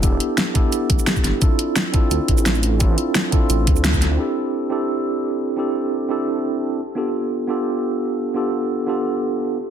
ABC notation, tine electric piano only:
X:1
M:4/4
L:1/8
Q:1/4=173
K:Gmix
V:1 name="Tine electric piano"
[B,DEGA]3 [B,DEGA]4- [B,DEGA] | [CDEFA]3 [CDEFA]4- [CDEFA] | [CDEFA]3 [CDEFA]4- [CDEFA] | [CDEGA]3 [CDEGA]4- [CDEGA] |
[CDEGA]3 [CDEGA]4 z | [B,DFGA]3 [B,DFGA]4- [B,DFGA] | [B,DFGA]3 [B,DFGA]4 z |]